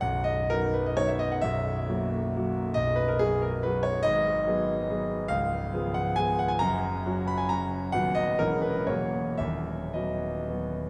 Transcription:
grand piano
0.01 B0 B1 F#5
0.24 D#5
0.50 F#3 B3 D#4 A#4
0.74 B4
0.86 D#5
0.97 F#3 B3 D#4 C#5
1.08 E5
1.19 D#5
1.32 F#5
1.41 B0 B1 E5
1.89 F#3 A#3 F#4
2.36 F#3 A#3 F#4
2.74 B0 B1 D#5
2.96 B4
3.08 A#4
3.19 F#3 B3 F#4 G#4
3.42 A#4
3.63 F#3 B3 F#4 B4
3.83 C#5
4.03 G#1 G#2 D#5
4.47 F#3 B3 G#4
4.89 F#3 B3 G#4
5.28 C#1 C#2 F5
5.73 F3 B3 G#4
5.94 F#5
6.16 F3 B3 G#4 G#5
6.39 F#5
6.48 G#5
6.59 F#1 F#2 A#5
7.06 F#3 C#4 F#4
7.28 B5
7.37 G#5
7.49 F#3 C#4 F#4 A#5
7.92 D#1 D#2 F#3 B3 F#4 F#5
8.15 D#5
8.39 E1 E2 G#3 C#4 E4 A#4
8.62 B4
8.87 E1 E2 F#3 A#3 F#4 C#5
9.38 D#1 D#2 E5
9.94 F#3 B3 F#4 D#5
10.49 F#3 B3 F#4

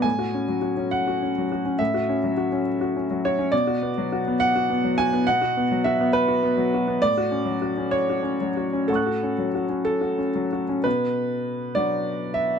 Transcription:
upright piano
0.02 A2 G#5
0.19 F#4
0.34 C#4
0.48 F#3
0.62 F#4
0.77 C#4
0.91 F#5
1.07 F#4
1.23 C#4
1.38 F#3
1.52 F#4
1.65 C#4
1.79 A2 E5
1.94 F#4
2.09 C#4
2.24 F#3
2.37 F#4
2.52 C#4
2.81 F#4
2.96 C#4
3.11 F#3
3.25 F#4 C#5
3.39 C#4
3.52 B2 D5
3.67 F#4
3.82 B3
3.98 F#3
4.12 F#4
4.28 B3
4.40 F#5
4.55 F#4
4.70 B3
4.84 F#3
4.98 F#4 G#5
5.13 B3
5.27 B2 F#5
5.41 F#4
5.57 B3
5.71 F#3
5.84 F#4 E5
6.01 B3
6.13 B4
6.28 F#4
6.43 B3
6.57 F#3
6.74 F#4
6.88 B3
7.02 A2 D5
7.17 F#4
7.31 C#4
7.46 F#3
7.62 F#4
7.78 C#4
7.91 C#5
8.09 F#4
8.23 C#4
8.41 F#3
8.57 F#4
8.73 C#4
8.88 A2 A4 F#5
8.93 C#6 F#6
9.06 F#4
9.23 C#4
9.38 F#3
9.55 F#4
9.69 C#4
9.85 A4
10.01 F#4
10.18 C#4
10.35 F#3
10.52 F#4
10.69 C#4
10.84 B2 B4
11.75 F#3 D4 F#4 D5
12.34 E5

